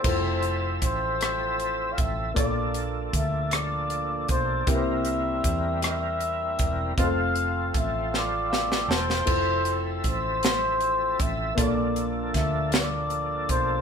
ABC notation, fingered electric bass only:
X:1
M:6/8
L:1/8
Q:3/8=52
K:F
V:1 name="Fingered electric bass" clef=bass
F,,,2 A,,,3 A,,, | B,,,2 D,,3 =B,,, | C,,2 E,,3 E,,, | F,,,2 A,,,3 E,,, |
F,,,2 A,,,3 A,,, | B,,,2 D,,3 =B,,, |]